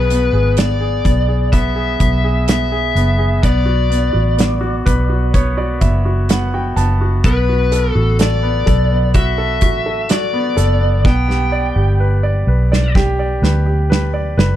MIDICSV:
0, 0, Header, 1, 5, 480
1, 0, Start_track
1, 0, Tempo, 952381
1, 1728, Time_signature, 4, 2, 24, 8
1, 7339, End_track
2, 0, Start_track
2, 0, Title_t, "Lead electric guitar"
2, 0, Program_c, 0, 29
2, 0, Note_on_c, 0, 71, 78
2, 271, Note_off_c, 0, 71, 0
2, 294, Note_on_c, 0, 74, 67
2, 773, Note_on_c, 0, 76, 86
2, 786, Note_off_c, 0, 74, 0
2, 1250, Note_off_c, 0, 76, 0
2, 1257, Note_on_c, 0, 76, 82
2, 1738, Note_on_c, 0, 74, 78
2, 1747, Note_off_c, 0, 76, 0
2, 2673, Note_off_c, 0, 74, 0
2, 3660, Note_on_c, 0, 71, 80
2, 3983, Note_off_c, 0, 71, 0
2, 3983, Note_on_c, 0, 69, 80
2, 4114, Note_off_c, 0, 69, 0
2, 4139, Note_on_c, 0, 74, 77
2, 4593, Note_off_c, 0, 74, 0
2, 4615, Note_on_c, 0, 76, 94
2, 5097, Note_on_c, 0, 74, 81
2, 5106, Note_off_c, 0, 76, 0
2, 5576, Note_on_c, 0, 79, 87
2, 5587, Note_off_c, 0, 74, 0
2, 6512, Note_off_c, 0, 79, 0
2, 7339, End_track
3, 0, Start_track
3, 0, Title_t, "Grand piano"
3, 0, Program_c, 1, 0
3, 0, Control_c, 1, 64, 127
3, 0, Note_on_c, 1, 59, 63
3, 0, Note_on_c, 1, 68, 41
3, 51, Note_off_c, 1, 59, 0
3, 51, Note_on_c, 1, 59, 50
3, 161, Note_off_c, 1, 68, 0
3, 169, Note_on_c, 1, 68, 41
3, 280, Note_off_c, 1, 59, 0
3, 287, Note_on_c, 1, 59, 40
3, 398, Note_off_c, 1, 68, 0
3, 406, Note_on_c, 1, 68, 50
3, 519, Note_off_c, 1, 59, 0
3, 526, Note_on_c, 1, 59, 43
3, 639, Note_off_c, 1, 68, 0
3, 646, Note_on_c, 1, 68, 44
3, 758, Note_off_c, 1, 59, 0
3, 765, Note_on_c, 1, 59, 65
3, 878, Note_off_c, 1, 68, 0
3, 886, Note_on_c, 1, 68, 42
3, 999, Note_off_c, 1, 59, 0
3, 1006, Note_on_c, 1, 59, 49
3, 1122, Note_off_c, 1, 68, 0
3, 1130, Note_on_c, 1, 68, 49
3, 1240, Note_off_c, 1, 59, 0
3, 1248, Note_on_c, 1, 59, 48
3, 1363, Note_off_c, 1, 68, 0
3, 1371, Note_on_c, 1, 68, 52
3, 1483, Note_off_c, 1, 59, 0
3, 1491, Note_on_c, 1, 59, 51
3, 1597, Note_off_c, 1, 68, 0
3, 1605, Note_on_c, 1, 68, 50
3, 1718, Note_off_c, 1, 59, 0
3, 1723, Note_off_c, 1, 68, 0
3, 1726, Note_on_c, 1, 59, 69
3, 1734, Control_c, 1, 64, 0
3, 1835, Control_c, 1, 64, 127
3, 1843, Note_on_c, 1, 66, 48
3, 1958, Note_off_c, 1, 59, 0
3, 1966, Note_on_c, 1, 59, 52
3, 2073, Note_off_c, 1, 66, 0
3, 2081, Note_on_c, 1, 66, 45
3, 2193, Note_off_c, 1, 59, 0
3, 2201, Note_on_c, 1, 59, 46
3, 2314, Note_off_c, 1, 66, 0
3, 2322, Note_on_c, 1, 66, 54
3, 2439, Note_off_c, 1, 59, 0
3, 2447, Note_on_c, 1, 59, 51
3, 2448, Note_on_c, 1, 71, 68
3, 2559, Note_off_c, 1, 66, 0
3, 2567, Note_on_c, 1, 66, 51
3, 2671, Note_off_c, 1, 71, 0
3, 2681, Note_off_c, 1, 59, 0
3, 2689, Note_on_c, 1, 59, 66
3, 2691, Note_on_c, 1, 73, 67
3, 2800, Note_off_c, 1, 66, 0
3, 2801, Note_off_c, 1, 73, 0
3, 2808, Note_on_c, 1, 66, 46
3, 2810, Note_on_c, 1, 74, 59
3, 2921, Note_off_c, 1, 59, 0
3, 2921, Note_off_c, 1, 74, 0
3, 2928, Note_on_c, 1, 59, 51
3, 2928, Note_on_c, 1, 76, 58
3, 3043, Note_off_c, 1, 66, 0
3, 3051, Note_on_c, 1, 66, 47
3, 3151, Note_off_c, 1, 76, 0
3, 3168, Note_off_c, 1, 59, 0
3, 3175, Note_on_c, 1, 78, 56
3, 3176, Note_on_c, 1, 59, 53
3, 3284, Note_off_c, 1, 78, 0
3, 3287, Note_off_c, 1, 66, 0
3, 3295, Note_on_c, 1, 66, 49
3, 3297, Note_on_c, 1, 79, 57
3, 3400, Note_off_c, 1, 59, 0
3, 3404, Note_off_c, 1, 79, 0
3, 3407, Note_on_c, 1, 59, 59
3, 3409, Note_on_c, 1, 81, 65
3, 3526, Note_off_c, 1, 66, 0
3, 3534, Note_on_c, 1, 66, 49
3, 3632, Note_off_c, 1, 81, 0
3, 3641, Note_off_c, 1, 59, 0
3, 3647, Note_off_c, 1, 66, 0
3, 3653, Note_on_c, 1, 59, 73
3, 3656, Control_c, 1, 64, 0
3, 3756, Control_c, 1, 64, 127
3, 3775, Note_on_c, 1, 66, 48
3, 3890, Note_on_c, 1, 69, 49
3, 3999, Note_off_c, 1, 66, 0
3, 4007, Note_on_c, 1, 66, 44
3, 4122, Note_off_c, 1, 69, 0
3, 4130, Note_on_c, 1, 69, 51
3, 4238, Note_off_c, 1, 59, 0
3, 4245, Note_on_c, 1, 59, 57
3, 4358, Note_off_c, 1, 69, 0
3, 4366, Note_on_c, 1, 69, 53
3, 4481, Note_off_c, 1, 59, 0
3, 4489, Note_on_c, 1, 59, 49
3, 4601, Note_off_c, 1, 66, 0
3, 4609, Note_on_c, 1, 66, 68
3, 4721, Note_off_c, 1, 69, 0
3, 4728, Note_on_c, 1, 69, 52
3, 4842, Note_off_c, 1, 66, 0
3, 4850, Note_on_c, 1, 66, 52
3, 4962, Note_off_c, 1, 69, 0
3, 4970, Note_on_c, 1, 69, 48
3, 5083, Note_off_c, 1, 66, 0
3, 5090, Note_on_c, 1, 66, 52
3, 5199, Note_off_c, 1, 59, 0
3, 5207, Note_on_c, 1, 59, 54
3, 5318, Note_off_c, 1, 69, 0
3, 5325, Note_on_c, 1, 69, 58
3, 5437, Note_off_c, 1, 59, 0
3, 5444, Note_on_c, 1, 59, 50
3, 5555, Note_off_c, 1, 66, 0
3, 5560, Note_off_c, 1, 69, 0
3, 5561, Note_off_c, 1, 59, 0
3, 5568, Note_on_c, 1, 59, 73
3, 5575, Control_c, 1, 64, 0
3, 5662, Control_c, 1, 64, 127
3, 5686, Note_on_c, 1, 67, 49
3, 5807, Note_on_c, 1, 74, 63
3, 5918, Note_off_c, 1, 67, 0
3, 5925, Note_on_c, 1, 67, 48
3, 6048, Note_on_c, 1, 71, 50
3, 6158, Note_off_c, 1, 74, 0
3, 6165, Note_on_c, 1, 74, 57
3, 6282, Note_off_c, 1, 71, 0
3, 6290, Note_on_c, 1, 71, 47
3, 6402, Note_off_c, 1, 74, 0
3, 6410, Note_on_c, 1, 74, 55
3, 6522, Note_off_c, 1, 67, 0
3, 6530, Note_on_c, 1, 67, 76
3, 6641, Note_off_c, 1, 74, 0
3, 6649, Note_on_c, 1, 74, 50
3, 6759, Note_off_c, 1, 71, 0
3, 6767, Note_on_c, 1, 71, 53
3, 6879, Note_off_c, 1, 67, 0
3, 6886, Note_on_c, 1, 67, 49
3, 6997, Note_off_c, 1, 71, 0
3, 7005, Note_on_c, 1, 71, 57
3, 7117, Note_off_c, 1, 74, 0
3, 7125, Note_on_c, 1, 74, 50
3, 7238, Note_off_c, 1, 71, 0
3, 7245, Note_on_c, 1, 71, 60
3, 7339, Note_off_c, 1, 59, 0
3, 7339, Note_off_c, 1, 67, 0
3, 7339, Note_off_c, 1, 71, 0
3, 7339, Note_off_c, 1, 74, 0
3, 7339, End_track
4, 0, Start_track
4, 0, Title_t, "Fingered electric bass"
4, 0, Program_c, 2, 33
4, 0, Note_on_c, 2, 35, 92
4, 148, Note_off_c, 2, 35, 0
4, 165, Note_on_c, 2, 32, 61
4, 507, Note_off_c, 2, 32, 0
4, 528, Note_on_c, 2, 35, 78
4, 988, Note_off_c, 2, 35, 0
4, 1009, Note_on_c, 2, 35, 70
4, 1468, Note_off_c, 2, 35, 0
4, 1488, Note_on_c, 2, 30, 75
4, 1711, Note_off_c, 2, 30, 0
4, 1730, Note_on_c, 2, 35, 93
4, 2069, Note_off_c, 2, 35, 0
4, 2088, Note_on_c, 2, 33, 64
4, 2428, Note_off_c, 2, 33, 0
4, 2451, Note_on_c, 2, 35, 82
4, 2910, Note_off_c, 2, 35, 0
4, 2929, Note_on_c, 2, 30, 78
4, 3388, Note_off_c, 2, 30, 0
4, 3409, Note_on_c, 2, 30, 90
4, 3632, Note_off_c, 2, 30, 0
4, 3650, Note_on_c, 2, 35, 97
4, 3989, Note_off_c, 2, 35, 0
4, 4009, Note_on_c, 2, 33, 78
4, 4349, Note_off_c, 2, 33, 0
4, 4368, Note_on_c, 2, 35, 87
4, 4848, Note_off_c, 2, 35, 0
4, 4848, Note_on_c, 2, 33, 83
4, 5308, Note_off_c, 2, 33, 0
4, 5328, Note_on_c, 2, 30, 88
4, 5567, Note_off_c, 2, 30, 0
4, 5567, Note_on_c, 2, 35, 89
4, 5908, Note_off_c, 2, 35, 0
4, 5926, Note_on_c, 2, 31, 85
4, 6267, Note_off_c, 2, 31, 0
4, 6285, Note_on_c, 2, 35, 96
4, 6746, Note_off_c, 2, 35, 0
4, 6764, Note_on_c, 2, 38, 79
4, 7226, Note_off_c, 2, 38, 0
4, 7245, Note_on_c, 2, 30, 82
4, 7339, Note_off_c, 2, 30, 0
4, 7339, End_track
5, 0, Start_track
5, 0, Title_t, "Drums"
5, 52, Note_on_c, 9, 42, 70
5, 102, Note_off_c, 9, 42, 0
5, 286, Note_on_c, 9, 42, 70
5, 296, Note_on_c, 9, 38, 94
5, 337, Note_off_c, 9, 42, 0
5, 346, Note_off_c, 9, 38, 0
5, 530, Note_on_c, 9, 36, 83
5, 533, Note_on_c, 9, 42, 56
5, 580, Note_off_c, 9, 36, 0
5, 583, Note_off_c, 9, 42, 0
5, 769, Note_on_c, 9, 42, 62
5, 770, Note_on_c, 9, 36, 71
5, 820, Note_off_c, 9, 36, 0
5, 820, Note_off_c, 9, 42, 0
5, 1008, Note_on_c, 9, 42, 53
5, 1009, Note_on_c, 9, 36, 74
5, 1058, Note_off_c, 9, 42, 0
5, 1060, Note_off_c, 9, 36, 0
5, 1249, Note_on_c, 9, 42, 80
5, 1257, Note_on_c, 9, 38, 97
5, 1299, Note_off_c, 9, 42, 0
5, 1307, Note_off_c, 9, 38, 0
5, 1494, Note_on_c, 9, 42, 64
5, 1544, Note_off_c, 9, 42, 0
5, 1730, Note_on_c, 9, 36, 86
5, 1731, Note_on_c, 9, 42, 65
5, 1781, Note_off_c, 9, 36, 0
5, 1781, Note_off_c, 9, 42, 0
5, 1974, Note_on_c, 9, 42, 70
5, 2025, Note_off_c, 9, 42, 0
5, 2210, Note_on_c, 9, 42, 66
5, 2220, Note_on_c, 9, 38, 90
5, 2260, Note_off_c, 9, 42, 0
5, 2270, Note_off_c, 9, 38, 0
5, 2452, Note_on_c, 9, 36, 80
5, 2455, Note_on_c, 9, 42, 66
5, 2502, Note_off_c, 9, 36, 0
5, 2506, Note_off_c, 9, 42, 0
5, 2692, Note_on_c, 9, 36, 82
5, 2693, Note_on_c, 9, 42, 60
5, 2742, Note_off_c, 9, 36, 0
5, 2744, Note_off_c, 9, 42, 0
5, 2929, Note_on_c, 9, 42, 55
5, 2930, Note_on_c, 9, 36, 77
5, 2979, Note_off_c, 9, 42, 0
5, 2981, Note_off_c, 9, 36, 0
5, 3170, Note_on_c, 9, 42, 78
5, 3178, Note_on_c, 9, 38, 101
5, 3221, Note_off_c, 9, 42, 0
5, 3229, Note_off_c, 9, 38, 0
5, 3413, Note_on_c, 9, 42, 68
5, 3463, Note_off_c, 9, 42, 0
5, 3649, Note_on_c, 9, 42, 66
5, 3650, Note_on_c, 9, 36, 106
5, 3699, Note_off_c, 9, 42, 0
5, 3701, Note_off_c, 9, 36, 0
5, 3890, Note_on_c, 9, 42, 82
5, 3941, Note_off_c, 9, 42, 0
5, 4128, Note_on_c, 9, 42, 74
5, 4137, Note_on_c, 9, 38, 91
5, 4178, Note_off_c, 9, 42, 0
5, 4188, Note_off_c, 9, 38, 0
5, 4370, Note_on_c, 9, 36, 82
5, 4371, Note_on_c, 9, 42, 62
5, 4420, Note_off_c, 9, 36, 0
5, 4422, Note_off_c, 9, 42, 0
5, 4607, Note_on_c, 9, 42, 62
5, 4609, Note_on_c, 9, 36, 72
5, 4657, Note_off_c, 9, 42, 0
5, 4660, Note_off_c, 9, 36, 0
5, 4844, Note_on_c, 9, 42, 64
5, 4849, Note_on_c, 9, 36, 71
5, 4894, Note_off_c, 9, 42, 0
5, 4899, Note_off_c, 9, 36, 0
5, 5087, Note_on_c, 9, 42, 76
5, 5095, Note_on_c, 9, 38, 88
5, 5137, Note_off_c, 9, 42, 0
5, 5145, Note_off_c, 9, 38, 0
5, 5330, Note_on_c, 9, 42, 65
5, 5380, Note_off_c, 9, 42, 0
5, 5568, Note_on_c, 9, 36, 107
5, 5575, Note_on_c, 9, 38, 47
5, 5619, Note_off_c, 9, 36, 0
5, 5625, Note_off_c, 9, 38, 0
5, 5696, Note_on_c, 9, 38, 45
5, 5746, Note_off_c, 9, 38, 0
5, 6417, Note_on_c, 9, 38, 57
5, 6467, Note_off_c, 9, 38, 0
5, 6527, Note_on_c, 9, 36, 80
5, 6534, Note_on_c, 9, 38, 67
5, 6578, Note_off_c, 9, 36, 0
5, 6584, Note_off_c, 9, 38, 0
5, 6773, Note_on_c, 9, 38, 72
5, 6823, Note_off_c, 9, 38, 0
5, 7016, Note_on_c, 9, 38, 97
5, 7066, Note_off_c, 9, 38, 0
5, 7253, Note_on_c, 9, 38, 98
5, 7303, Note_off_c, 9, 38, 0
5, 7339, End_track
0, 0, End_of_file